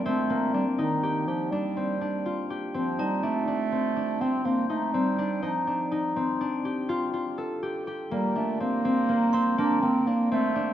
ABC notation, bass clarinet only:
X:1
M:11/8
L:1/8
Q:1/4=123
K:Fmix
V:1 name="Bass clarinet"
A,2 G, E,2 F, G,4 z | F, G, A,4 C B, A, G,2 | F,4 z6 z | G, A, B,4 D C B, A,2 |]